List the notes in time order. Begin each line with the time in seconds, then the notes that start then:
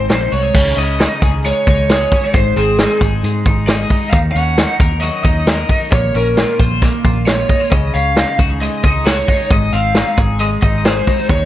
Already playing: G#2 C4
0.09 A#1 D#4 C5, snare, closed hi-hat
0.32 C2 F#4 C#5, closed hi-hat
0.43 G#4
0.54 C#2 C#3, kick, crash
0.77 C#2 C#4 D#5, closed hi-hat
0.99 D#4, snare, closed hi-hat
1.22 C#2 G#4, kick, closed hi-hat
1.44 G#3 C#5, closed hi-hat
1.67 C#2 D#4 C#5, kick, closed hi-hat
1.89 G#4, snare, closed hi-hat
2.12 C#4, kick, open hi-hat
2.24 D#4
2.34 G#1 G#2 C5, kick, closed hi-hat
2.56 G#1 C4 G#4, closed hi-hat
2.79 D#4, snare, closed hi-hat
3.01 G#1 G#4, kick, closed hi-hat
3.23 G#2 G#3, closed hi-hat
3.46 G#1 D#4, kick, closed hi-hat
3.67 G#4 D#5, snare, closed hi-hat
3.90 D#4, kick, open hi-hat
4.10 D#2 F5, kick, closed hi-hat
4.15 D#3
4.32 D#2 F#5, closed hi-hat
4.36 C#4
4.58 D#4, snare, closed hi-hat
4.80 D#2 A#4, kick, closed hi-hat
5.01 F#3 D#5, closed hi-hat
5.24 D#2 D#4 D#5, kick, closed hi-hat
5.47 A#4, snare, closed hi-hat
5.69 D#4, kick, open hi-hat
5.92 A#1 A#2 C#5, kick, closed hi-hat
6.14 A#1 C#4 A#4, closed hi-hat
6.37 F4, snare, closed hi-hat
6.59 A#1 C5, kick, closed hi-hat
6.82 A#3, kick, snare, closed hi-hat
7.04 A#1 F4, kick, closed hi-hat
7.27 C#5, snare, closed hi-hat
7.49 D#4, kick, open hi-hat
7.60 F4
7.71 C#2 C#3 D#5, kick, closed hi-hat
7.94 C#2 C#4 F5, closed hi-hat
8.16 D#4, snare, closed hi-hat
8.39 C#2 F#4, kick, closed hi-hat
8.50 G#4
8.61 G#3 D#5, closed hi-hat
8.83 C#2 D#4 D#5, kick, closed hi-hat
9.06 F#4 C#5, snare, closed hi-hat
9.17 G#4
9.27 D#4, kick, open hi-hat
9.50 G#1 G#2 D#5, kick, closed hi-hat
9.73 G#1 C4 F5, closed hi-hat
9.95 D#4, snare, closed hi-hat
10.17 G#1 G#4, kick, closed hi-hat
10.40 G#3 D#5, closed hi-hat
10.62 G#1 D#4 D#5, kick, closed hi-hat
10.85 G#4 C5, snare, closed hi-hat
11.07 D#4, kick, open hi-hat
11.29 D#2 D#3 C#5, kick, closed hi-hat